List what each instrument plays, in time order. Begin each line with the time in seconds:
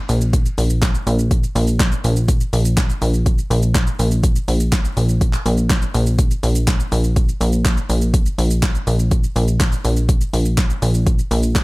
0.09 analog synth bass A#1, open hi-hat, shaker
0.21 shaker
0.33 kick, closed hi-hat, shaker
0.46 shaker
0.58 analog synth bass A#1, open hi-hat, shaker
0.70 shaker
0.82 kick, snare, clap, closed hi-hat, shaker
0.95 shaker
1.07 analog synth bass A#1, open hi-hat, shaker
1.19 shaker
1.31 kick, closed hi-hat, shaker
1.43 shaker
1.55 analog synth bass A#1, open hi-hat, shaker
1.67 shaker
1.80 kick, snare, clap, closed hi-hat, shaker
1.92 shaker
2.04 analog synth bass A#1, open hi-hat, shaker
2.16 shaker
2.28 kick, closed hi-hat, shaker
2.41 shaker
2.53 analog synth bass A#1, open hi-hat, shaker
2.65 shaker
2.77 kick, snare, clap, closed hi-hat, shaker
2.90 shaker
3.02 analog synth bass A#1, open hi-hat, shaker
3.14 shaker
3.26 kick, closed hi-hat, shaker
3.38 shaker
3.50 analog synth bass A#1, open hi-hat, shaker
3.62 shaker
3.75 kick, snare, clap, closed hi-hat, shaker
3.87 shaker
3.99 analog synth bass A#1, open hi-hat, shaker
4.11 shaker
4.24 kick, closed hi-hat, shaker
4.36 shaker
4.48 analog synth bass A#1, open hi-hat, shaker
4.60 shaker
4.72 kick, snare, clap, closed hi-hat, shaker
4.85 shaker
4.97 analog synth bass A#1, open hi-hat, shaker
5.09 shaker
5.21 kick, closed hi-hat, shaker
5.33 clap, shaker
5.46 analog synth bass A#1, open hi-hat, shaker
5.57 shaker
5.70 kick, snare, clap, closed hi-hat, shaker
5.82 shaker
5.94 analog synth bass A#1, open hi-hat, shaker
6.06 shaker
6.19 kick, closed hi-hat, shaker
6.31 shaker
6.43 analog synth bass A#1, open hi-hat, shaker
6.55 shaker
6.67 kick, snare, clap, closed hi-hat, shaker
6.80 shaker
6.92 analog synth bass A#1, open hi-hat, shaker
7.04 shaker
7.16 kick, closed hi-hat, shaker
7.29 shaker
7.41 analog synth bass A#1, open hi-hat, shaker
7.53 shaker
7.65 kick, snare, clap, closed hi-hat, shaker
7.77 shaker
7.89 analog synth bass A#1, open hi-hat, shaker
8.02 shaker
8.14 kick, closed hi-hat, shaker
8.26 shaker
8.38 analog synth bass A#1, open hi-hat, shaker
8.50 shaker
8.62 kick, snare, clap, closed hi-hat, shaker
8.75 shaker
8.87 analog synth bass A#1, open hi-hat, shaker
8.99 shaker
9.11 kick, closed hi-hat, shaker
9.24 shaker
9.36 analog synth bass A#1, open hi-hat, shaker
9.48 shaker
9.60 kick, snare, clap, closed hi-hat, shaker
9.72 shaker
9.85 analog synth bass A#1, open hi-hat, shaker
9.97 shaker
10.09 kick, closed hi-hat, shaker
10.21 shaker
10.33 analog synth bass A#1, open hi-hat, shaker
10.45 shaker
10.57 kick, snare, clap, closed hi-hat, shaker
10.70 shaker
10.82 analog synth bass A#1, open hi-hat, shaker
10.94 shaker
11.07 kick, closed hi-hat, shaker
11.19 shaker
11.31 analog synth bass A#1, open hi-hat, shaker
11.43 shaker
11.55 kick, snare, clap, closed hi-hat, shaker